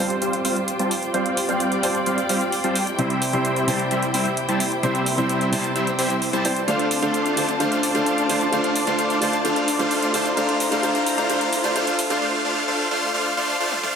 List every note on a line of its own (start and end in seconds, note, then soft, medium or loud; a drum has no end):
0.00 0.19 F1 medium
0.00 0.11 G3 medium
0.00 1.13 G3 medium
0.00 0.11 C4 medium
0.00 1.14 C4 medium
0.00 0.11 F4 medium
0.00 1.14 F4 medium
0.00 2.95 F4 medium
0.00 6.64 G4 medium
0.00 0.11 C5 medium
0.00 1.12 C5 medium
0.00 1.15 C5 medium
0.00 6.64 G5 medium
0.00 0.11 A5 loud
0.00 riser medium
0.10 closed hi-hat soft
0.10 shaker soft
0.22 0.43 F1 medium
0.22 0.34 G3 medium
0.22 0.34 C4 medium
0.22 0.34 F4 medium
0.22 0.34 C5 medium
0.22 0.34 F5 medium
0.22 closed hi-hat medium
0.22 shaker soft
0.33 closed hi-hat soft
0.33 shaker soft
0.45 0.77 F1 medium
0.45 0.57 G3 medium
0.45 0.57 C4 medium
0.45 0.57 F4 medium
0.45 0.57 C5 medium
0.45 0.57 F5 loud
0.45 open hi-hat loud
0.45 shaker medium
0.56 closed hi-hat soft
0.56 shaker soft
0.68 closed hi-hat medium
0.68 shaker soft
0.79 1.12 F1 loud
0.79 0.91 G3 medium
0.79 0.91 C4 medium
0.79 0.91 F4 medium
0.79 0.91 C5 medium
0.79 0.91 A5 medium
0.79 closed hi-hat soft
0.79 shaker soft
0.91 open hi-hat loud
0.91 shaker medium
1.03 closed hi-hat soft
1.03 shaker soft
1.13 1.46 F1 medium
1.13 1.46 G3 medium
1.13 1.33 G3 medium
1.13 1.46 C4 medium
1.13 1.33 C4 medium
1.13 1.33 F4 medium
1.13 1.46 F4 medium
1.13 1.33 C5 medium
1.13 1.46 C5 medium
1.13 2.97 D5 medium
1.13 1.33 F5 medium
1.13 closed hi-hat medium
1.13 shaker soft
1.26 closed hi-hat soft
1.37 open hi-hat loud
1.37 shaker medium
1.48 1.81 F1 medium
1.48 1.80 G3 medium
1.48 1.81 G3 medium
1.48 1.80 C4 medium
1.48 1.81 C4 medium
1.48 1.81 F4 medium
1.48 1.81 C5 medium
1.48 1.81 F5 medium
1.48 closed hi-hat soft
1.48 shaker soft
1.60 closed hi-hat medium
1.60 shaker soft
1.72 closed hi-hat soft
1.72 shaker soft
1.82 2.04 F1 medium
1.82 2.95 G3 medium
1.82 1.95 G3 medium
1.82 2.96 C4 medium
1.82 1.95 C4 medium
1.82 1.95 F4 medium
1.82 2.96 F4 medium
1.82 1.95 C5 medium
1.82 2.97 C5 medium
1.82 1.95 A5 loud
1.82 open hi-hat loud
1.82 shaker medium
1.95 closed hi-hat soft
1.95 shaker soft
2.06 2.27 F1 medium
2.06 2.18 G3 medium
2.06 2.18 C4 medium
2.06 2.18 F4 medium
2.06 2.18 C5 medium
2.06 2.18 F5 medium
2.06 closed hi-hat medium
2.06 shaker soft
2.18 closed hi-hat soft
2.18 shaker soft
2.29 2.62 F1 loud
2.29 2.41 G3 loud
2.29 2.41 C4 medium
2.29 2.41 F4 medium
2.29 2.41 C5 medium
2.29 2.41 F5 loud
2.29 open hi-hat loud
2.29 shaker medium
2.41 closed hi-hat soft
2.41 shaker soft
2.52 open hi-hat medium
2.52 shaker soft
2.64 2.96 F2 loud
2.64 2.76 G3 medium
2.64 2.76 C4 medium
2.64 2.76 F4 medium
2.64 2.76 C5 medium
2.64 2.76 A5 loud
2.64 closed hi-hat soft
2.64 shaker soft
2.75 open hi-hat loud
2.75 shaker medium
2.87 closed hi-hat soft
2.87 shaker soft
2.98 3.31 C2 loud
2.98 3.30 C3 medium
2.98 3.30 G3 medium
2.98 3.18 G3 medium
2.98 3.31 C4 medium
2.98 3.18 C4 medium
2.98 6.64 E4 medium
2.98 3.18 E4 medium
2.98 3.31 E4 medium
2.98 10.33 C5 medium
2.98 3.18 C5 medium
2.98 3.31 C5 medium
2.98 3.18 E5 loud
2.98 closed hi-hat medium
2.98 shaker soft
3.10 closed hi-hat soft
3.22 open hi-hat loud
3.22 shaker medium
3.33 3.66 C2 loud
3.33 3.65 C3 medium
3.33 3.65 G3 medium
3.33 3.65 C4 medium
3.33 3.65 E4 medium
3.33 3.65 C5 medium
3.33 3.65 E5 medium
3.33 closed hi-hat soft
3.33 shaker soft
3.45 closed hi-hat medium
3.45 shaker soft
3.56 closed hi-hat soft
3.56 shaker soft
3.67 3.89 C2 loud
3.67 4.80 C3 medium
3.67 4.80 G3 medium
3.67 3.80 G3 medium
3.67 3.80 C4 medium
3.67 4.81 C4 medium
3.67 3.80 E4 medium
3.67 4.81 E4 medium
3.67 3.80 C5 medium
3.67 4.81 C5 medium
3.67 3.80 A5 medium
3.67 open hi-hat loud
3.67 shaker medium
3.79 closed hi-hat soft
3.79 shaker soft
3.91 4.12 C2 loud
3.91 4.03 G3 medium
3.91 4.03 C4 medium
3.91 4.03 E4 medium
3.91 4.03 C5 medium
3.91 4.03 E5 loud
3.91 closed hi-hat medium
3.91 shaker soft
4.02 closed hi-hat soft
4.02 shaker soft
4.14 4.46 C2 medium
4.14 4.26 G3 loud
4.14 4.26 C4 medium
4.14 4.26 E4 medium
4.14 4.26 C5 medium
4.14 4.26 E5 loud
4.14 open hi-hat loud
4.14 shaker medium
4.26 closed hi-hat soft
4.26 shaker soft
4.37 closed hi-hat medium
4.37 shaker soft
4.49 4.81 C2 medium
4.49 4.61 G3 medium
4.49 4.61 C4 medium
4.49 4.61 E4 medium
4.49 4.61 C5 medium
4.49 4.61 A5 medium
4.49 closed hi-hat soft
4.49 shaker soft
4.60 open hi-hat loud
4.60 shaker medium
4.72 closed hi-hat soft
4.72 shaker soft
4.83 5.16 C2 medium
4.83 5.15 C3 medium
4.83 5.15 G3 medium
4.83 5.02 G3 medium
4.83 5.02 C4 medium
4.83 5.15 C4 medium
4.83 5.02 E4 medium
4.83 5.15 E4 medium
4.83 5.02 C5 medium
4.83 5.15 C5 medium
4.83 5.02 E5 loud
4.83 closed hi-hat medium
4.83 shaker soft
4.95 closed hi-hat soft
4.95 shaker soft
5.06 open hi-hat loud
5.06 shaker medium
5.17 5.50 C2 medium
5.17 5.49 C3 medium
5.17 5.50 G3 medium
5.17 5.50 C4 medium
5.17 5.50 E4 medium
5.17 5.50 C5 medium
5.17 5.50 E5 medium
5.17 closed hi-hat soft
5.17 shaker soft
5.29 closed hi-hat medium
5.29 shaker soft
5.41 closed hi-hat soft
5.41 shaker soft
5.51 5.73 C2 medium
5.51 6.42 C3 medium
5.51 6.42 G3 medium
5.51 5.64 G3 medium
5.51 5.64 C4 medium
5.51 6.43 C4 medium
5.51 5.64 E4 medium
5.51 6.43 E4 medium
5.51 5.64 C5 medium
5.51 6.43 C5 medium
5.51 5.64 A5 loud
5.51 open hi-hat loud
5.51 shaker medium
5.64 closed hi-hat soft
5.64 shaker soft
5.76 5.96 C2 loud
5.76 5.87 G3 medium
5.76 5.87 C4 medium
5.76 5.87 E4 medium
5.76 5.87 C5 medium
5.76 5.87 E5 loud
5.76 closed hi-hat medium
5.76 shaker soft
5.87 closed hi-hat soft
5.87 shaker soft
5.99 6.31 C2 medium
5.99 6.10 G3 loud
5.99 6.10 C4 medium
5.99 6.10 E4 medium
5.99 6.10 C5 medium
5.99 6.10 E5 loud
5.99 open hi-hat loud
5.99 shaker medium
6.10 closed hi-hat soft
6.10 shaker soft
6.22 open hi-hat medium
6.22 shaker soft
6.33 6.66 C2 loud
6.33 6.45 G3 medium
6.33 6.45 C4 medium
6.33 6.45 E4 medium
6.33 6.45 C5 medium
6.33 6.45 A5 loud
6.33 closed hi-hat soft
6.33 shaker soft
6.44 6.56 G3 medium
6.44 6.56 C4 medium
6.44 6.56 E4 medium
6.44 6.56 C5 medium
6.44 open hi-hat loud
6.44 shaker medium
6.56 closed hi-hat soft
6.56 shaker soft
6.67 7.00 D2 loud
6.67 7.00 D3 medium
6.67 6.87 A3 medium
6.67 7.00 A3 medium
6.67 6.87 D4 medium
6.67 7.00 D4 medium
6.67 12.18 F4 medium
6.67 6.87 F4 medium
6.67 7.00 F4 medium
6.67 6.87 C5 medium
6.67 7.00 C5 medium
6.67 12.18 D5 medium
6.67 6.87 F5 medium
6.67 10.33 A5 medium
6.67 closed hi-hat medium
6.67 shaker soft
6.79 closed hi-hat soft
6.91 open hi-hat loud
6.91 shaker medium
7.02 7.35 D2 medium
7.02 7.34 D3 medium
7.02 7.34 A3 medium
7.02 7.34 D4 medium
7.02 7.34 F4 medium
7.02 7.35 F4 medium
7.02 7.34 C5 medium
7.02 7.35 C5 medium
7.02 7.34 F5 medium
7.02 shaker soft
7.14 closed hi-hat medium
7.14 shaker soft
7.26 closed hi-hat soft
7.26 shaker soft
7.36 7.58 D2 medium
7.36 7.58 D3 medium
7.36 7.58 A3 medium
7.36 7.49 A3 medium
7.36 7.49 D4 medium
7.36 7.58 D4 medium
7.36 7.49 F4 medium
7.36 7.59 F4 medium
7.36 7.49 C5 medium
7.36 7.59 C5 medium
7.36 7.49 A5 medium
7.36 open hi-hat loud
7.36 shaker medium
7.49 closed hi-hat soft
7.49 shaker soft
7.60 7.93 D2 medium
7.60 7.92 D3 medium
7.60 7.92 A3 medium
7.60 7.79 A3 medium
7.60 7.92 D4 medium
7.60 7.79 D4 medium
7.60 7.79 F4 medium
7.60 7.92 F4 medium
7.60 7.79 C5 medium
7.60 7.92 C5 medium
7.60 7.79 F5 medium
7.60 closed hi-hat medium
7.60 shaker soft
7.72 closed hi-hat soft
7.72 shaker soft
7.83 open hi-hat loud
7.83 shaker medium
7.94 8.27 D2 medium
7.94 8.26 D3 medium
7.94 8.26 A3 medium
7.94 8.27 A3 medium
7.94 8.27 D4 medium
7.94 8.27 F4 medium
7.94 8.27 C5 medium
7.94 8.27 F5 medium
7.94 closed hi-hat soft
7.94 shaker soft
8.06 closed hi-hat medium
8.06 shaker soft
8.18 closed hi-hat soft
8.18 shaker soft
8.28 8.50 D2 loud
8.28 8.50 D3 medium
8.28 8.50 A3 medium
8.28 8.41 A3 medium
8.28 8.51 D4 medium
8.28 8.41 D4 medium
8.28 8.41 F4 medium
8.28 8.51 F4 medium
8.28 8.41 C5 medium
8.28 8.51 C5 medium
8.28 8.41 A5 medium
8.28 open hi-hat loud
8.28 shaker medium
8.41 closed hi-hat soft
8.41 shaker soft
8.52 8.85 D2 loud
8.52 8.84 D3 medium
8.52 8.84 A3 medium
8.52 8.72 A3 medium
8.52 8.84 D4 medium
8.52 8.72 D4 medium
8.52 8.72 F4 medium
8.52 8.84 F4 medium
8.52 8.72 C5 medium
8.52 8.85 C5 medium
8.52 8.72 F5 medium
8.52 closed hi-hat medium
8.52 shaker soft
8.64 closed hi-hat soft
8.76 open hi-hat loud
8.76 shaker medium
8.86 9.19 D2 medium
8.86 9.19 D3 medium
8.86 9.19 A3 medium
8.86 9.19 D4 medium
8.86 9.19 F4 medium
8.86 9.19 C5 medium
8.86 9.19 F5 medium
8.86 closed hi-hat soft
8.86 shaker soft
8.99 closed hi-hat medium
8.99 shaker soft
9.10 closed hi-hat soft
9.10 shaker soft
9.21 9.43 D2 medium
9.21 9.42 D3 medium
9.21 9.43 A3 medium
9.21 9.34 A3 medium
9.21 9.34 D4 medium
9.21 9.43 D4 medium
9.21 9.34 F4 medium
9.21 9.43 F4 medium
9.21 9.34 C5 medium
9.21 9.44 C5 medium
9.21 9.34 A5 medium
9.21 open hi-hat loud
9.21 shaker medium
9.33 closed hi-hat soft
9.33 shaker soft
9.44 9.77 D2 loud
9.44 9.76 D3 medium
9.44 9.77 A3 medium
9.44 9.64 A3 medium
9.44 9.77 D4 medium
9.44 9.64 D4 medium
9.44 9.64 F4 medium
9.44 9.77 F4 medium
9.44 9.64 C5 medium
9.44 9.77 C5 medium
9.44 9.64 F5 medium
9.44 closed hi-hat medium
9.44 shaker soft
9.56 closed hi-hat soft
9.56 shaker soft
9.68 open hi-hat loud
9.68 shaker medium
9.79 10.12 D2 medium
9.79 10.11 D3 medium
9.79 10.11 A3 medium
9.79 10.11 D4 medium
9.79 10.11 F4 medium
9.79 10.11 C5 medium
9.79 10.12 C5 medium
9.79 10.11 F5 medium
9.79 closed hi-hat soft
9.79 shaker soft
9.91 open hi-hat medium
9.91 shaker soft
10.02 closed hi-hat soft
10.02 shaker soft
10.13 10.35 D2 loud
10.13 10.35 D3 medium
10.13 10.35 A3 medium
10.13 10.26 A3 medium
10.13 10.35 D4 medium
10.13 10.26 D4 medium
10.13 10.26 F4 medium
10.13 10.36 F4 medium
10.13 10.26 C5 medium
10.13 10.36 C5 medium
10.13 10.26 A5 medium
10.13 open hi-hat loud
10.13 shaker medium
10.26 closed hi-hat soft
10.26 shaker soft
10.37 10.69 A#1 loud
10.37 10.69 D3 medium
10.37 10.69 A3 medium
10.37 10.56 A3 medium
10.37 10.56 D4 medium
10.37 10.69 D4 medium
10.37 10.56 F4 medium
10.37 10.69 F4 medium
10.37 10.56 C5 medium
10.37 10.69 C5 medium
10.37 10.56 F5 medium
10.37 12.20 A#5 loud
10.37 closed hi-hat medium
10.37 shaker soft
10.49 closed hi-hat soft
10.60 open hi-hat loud
10.60 shaker medium
10.71 10.81 D3 medium
10.71 10.81 A3 medium
10.71 10.81 D4 medium
10.71 10.81 F4 medium
10.71 10.82 F4 medium
10.71 10.81 C5 medium
10.71 10.82 C5 medium
10.71 10.81 F5 medium
10.71 closed hi-hat soft
10.71 shaker soft
10.83 11.16 A#1 medium
10.83 11.15 D3 medium
10.83 11.15 A3 medium
10.83 11.02 A3 medium
10.83 11.02 D4 medium
10.83 11.15 D4 medium
10.83 11.02 F4 medium
10.83 11.15 F4 medium
10.83 11.02 C5 medium
10.83 11.15 C5 medium
10.83 11.02 F5 medium
10.83 closed hi-hat medium
10.83 shaker soft
10.95 closed hi-hat soft
10.95 shaker soft
11.06 open hi-hat loud
11.06 shaker medium
11.17 11.27 D3 medium
11.17 11.27 A3 medium
11.17 11.28 A3 medium
11.17 11.28 D4 medium
11.17 11.28 F4 medium
11.17 11.28 C5 medium
11.17 11.28 F5 medium
11.17 closed hi-hat soft
11.17 shaker soft
11.29 11.62 A#1 loud
11.29 11.61 D3 medium
11.29 11.61 A3 medium
11.29 11.48 A3 medium
11.29 11.48 D4 medium
11.29 11.61 D4 medium
11.29 11.48 F4 medium
11.29 11.61 F4 medium
11.29 11.48 C5 medium
11.29 11.62 C5 medium
11.29 11.48 F5 loud
11.29 closed hi-hat medium
11.29 shaker soft
11.41 closed hi-hat soft
11.41 shaker soft
11.53 open hi-hat loud
11.53 shaker medium
11.64 11.73 D3 medium
11.64 11.74 A3 medium
11.64 11.74 D4 medium
11.64 11.74 F4 medium
11.64 11.74 C5 medium
11.64 11.74 F5 medium
11.64 closed hi-hat soft
11.64 shaker soft
11.75 12.08 A#1 loud
11.75 12.07 D3 medium
11.75 12.07 A3 medium
11.75 11.95 A3 medium
11.75 12.07 D4 medium
11.75 11.95 D4 medium
11.75 11.95 F4 medium
11.75 12.08 F4 medium
11.75 11.95 C5 medium
11.75 12.08 C5 medium
11.75 11.95 F5 loud
11.75 closed hi-hat medium
11.75 shaker soft
11.87 closed hi-hat soft
11.87 shaker soft
11.99 open hi-hat loud
11.99 shaker medium
12.10 12.19 A#1 medium
12.10 12.20 D3 medium
12.10 12.20 A3 medium
12.10 12.20 D4 medium
12.10 12.20 F4 medium
12.10 12.20 C5 medium
12.10 12.20 F5 medium
12.10 closed hi-hat soft
12.10 shaker soft
12.22 12.41 A3 medium
12.22 12.41 D4 medium
12.22 12.41 F4 medium
12.22 12.41 C5 medium
12.22 12.41 F5 medium
12.45 12.64 A3 medium
12.45 12.64 D4 medium
12.45 12.64 F4 medium
12.45 12.64 C5 medium
12.45 12.64 F5 medium
12.68 12.87 A3 medium
12.68 12.87 D4 medium
12.68 12.87 F4 medium
12.68 12.87 C5 medium
12.68 12.87 F5 loud
12.91 13.10 A3 medium
12.91 13.10 D4 medium
12.91 13.10 F4 medium
12.91 13.10 C5 medium
12.91 13.10 F5 loud
13.14 13.33 A3 medium
13.14 13.33 D4 medium
13.14 13.33 F4 medium
13.14 13.33 C5 medium
13.14 13.33 F5 loud
13.37 13.56 A3 medium
13.37 13.56 D4 medium
13.37 13.56 F4 medium
13.37 13.56 C5 medium
13.37 13.56 F5 loud
13.60 13.79 A3 medium
13.60 13.79 D4 medium
13.60 13.79 F4 medium
13.60 13.79 C5 medium
13.60 13.79 F5 loud
13.72 high tom medium
13.83 13.96 A3 medium
13.83 13.96 D4 medium
13.83 13.96 F4 medium
13.83 13.96 C5 medium
13.83 13.96 F5 loud
13.83 mid tom medium